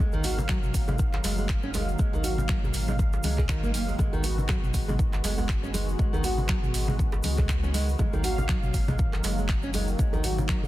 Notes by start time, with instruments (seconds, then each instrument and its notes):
Already playing: analog synth pad D#3
0.00 sub bass G#1, analog synth pad F#3 A#3 F5, nylon-string guitar G#3
0.12 nylon-string guitar D#3, djembe bass, cabasa
0.24 nylon-string guitar F#4, open hi-hat, cabasa
0.38 djembe tone, low conga, cabasa
0.49 nylon-string guitar F#3, finger snap, kick, clap, cabasa
0.63 mid tom, cabasa
0.74 sub bass G#1, kick, open hi-hat, cabasa
0.88 nylon-string guitar G#3, mid tom, djembe tone, low conga, cabasa
0.99 kick, cabasa
1.13 clap, djembe slap, cabasa
1.24 sub bass F#1, nylon-string guitar G#3, open hi-hat, djembe slap, djembe tone, cabasa
1.38 nylon-string guitar G#3, cabasa
1.49 finger snap, kick, clap, cabasa
1.63 nylon-string guitar C#4, cabasa
1.74 nylon-string guitar G#3, open hi-hat, djembe tone, cabasa
1.88 cabasa
1.99 sub bass G#1, nylon-string guitar G#3, kick, cabasa
2.13 nylon-string guitar D#3, djembe tone, djembe bass, cabasa
2.24 nylon-string guitar F#4, open hi-hat, cabasa
2.38 low conga, cabasa
2.49 nylon-string guitar F#3, finger snap, kick, clap, cabasa
2.63 mid tom, djembe tone, cabasa
2.74 sub bass G#1, open hi-hat, cabasa
2.88 nylon-string guitar G#3, mid tom, low conga, cabasa
2.99 kick, djembe tone, high conga, cabasa
3.13 djembe slap, cabasa
3.23 sub bass C#2, nylon-string guitar G#3, open hi-hat, high conga, cabasa
3.38 nylon-string guitar G#4, kick, clap, mid tom, djembe bass, cabasa
3.49 sub bass G#1, nylon-string guitar D#3, finger snap, kick, clap, djembe tone, cabasa
3.63 nylon-string guitar A#3, cabasa
3.74 sub bass F#1, nylon-string guitar A#3, open hi-hat, cabasa
3.88 nylon-string guitar G#3, djembe tone, cabasa
3.98 sub bass G#1, nylon-string guitar G#3, analog synth pad G#3 B3 F#4, kick, high conga, djembe tone, cabasa
4.13 nylon-string guitar D#3, djembe bass, cabasa
4.24 nylon-string guitar F#4, open hi-hat, cabasa
4.38 low conga, cabasa
4.49 nylon-string guitar F#3, finger snap, kick, clap, djembe tone, cabasa
4.63 mid tom, cabasa
4.74 sub bass G#1, kick, open hi-hat, cabasa
4.88 nylon-string guitar G#3, mid tom, djembe tone, low conga, cabasa
4.99 kick, cabasa
5.13 clap, djembe slap, cabasa
5.24 sub bass F#1, nylon-string guitar G#3, open hi-hat, djembe slap, cabasa
5.38 nylon-string guitar G#3, djembe tone, cabasa
5.49 finger snap, kick, clap, cabasa
5.63 nylon-string guitar C#4, cabasa
5.74 nylon-string guitar G#3, open hi-hat, djembe tone, cabasa
5.89 cabasa
5.99 sub bass G#1, nylon-string guitar G#3, kick, cabasa
6.13 nylon-string guitar D#3, djembe bass, cabasa
6.24 nylon-string guitar F#4, open hi-hat, djembe tone, cabasa
6.38 low conga, cabasa
6.48 nylon-string guitar F#3, finger snap, kick, clap, cabasa
6.63 mid tom, djembe tone, cabasa
6.74 sub bass G#1, open hi-hat, cabasa
6.88 nylon-string guitar G#3, mid tom, low conga, cabasa
6.99 kick, high conga, cabasa
7.12 djembe slap, djembe tone, cabasa
7.23 sub bass C#2, nylon-string guitar G#3, open hi-hat, high conga, cabasa
7.38 nylon-string guitar G#3, kick, clap, mid tom, djembe bass, cabasa
7.49 finger snap, kick, clap, djembe tone, cabasa
7.63 nylon-string guitar C#4, cabasa
7.74 nylon-string guitar G#3, open hi-hat, cabasa
7.89 cabasa
7.99 sub bass G#1, analog synth pad D#3 F#3 A#3 F5, nylon-string guitar G#3, kick, high conga, djembe tone, cabasa
8.13 nylon-string guitar D#3, djembe bass, cabasa
8.24 nylon-string guitar F#4, open hi-hat, cabasa
8.38 djembe tone, low conga, cabasa
8.49 nylon-string guitar F#3, finger snap, kick, clap, cabasa
8.63 mid tom, cabasa
8.74 sub bass G#1, kick, open hi-hat, cabasa
8.88 nylon-string guitar G#3, mid tom, djembe tone, low conga, cabasa
8.98 kick, cabasa
9.13 clap, djembe slap, cabasa
9.23 sub bass F#1, nylon-string guitar G#3, open hi-hat, djembe slap, djembe tone, cabasa
9.38 nylon-string guitar G#3, cabasa
9.49 finger snap, kick, clap, cabasa
9.62 nylon-string guitar C#4, cabasa
9.74 nylon-string guitar G#3, open hi-hat, djembe tone, cabasa
9.88 cabasa
9.99 sub bass G#1, nylon-string guitar G#3, analog synth pad D#4, kick, high conga, cabasa
10.13 nylon-string guitar D#3, djembe tone, high conga, djembe bass, cabasa
10.24 nylon-string guitar F#4, open hi-hat, cabasa
10.38 low conga, cabasa
10.49 nylon-string guitar F#3, finger snap, kick, clap, cabasa
10.63 mid tom, djembe tone, cabasa